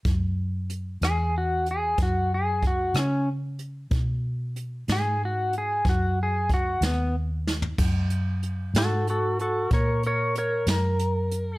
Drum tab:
CC |------------------------|------------------------|x-----------------------|
HH |x---x-x---x-x---x-x---x-|x---x-x---x-x---x-x-----|--x-x-x-x-x-x-x-x-x-x-x-|
SD |------r-----------r-----|------o-----------o---o-|------o-----------o-----|
FT |------------------------|-----------------------o|------------------------|
BD |o-----------o---o-------|o-----------o---o-------|o-----------o-----------|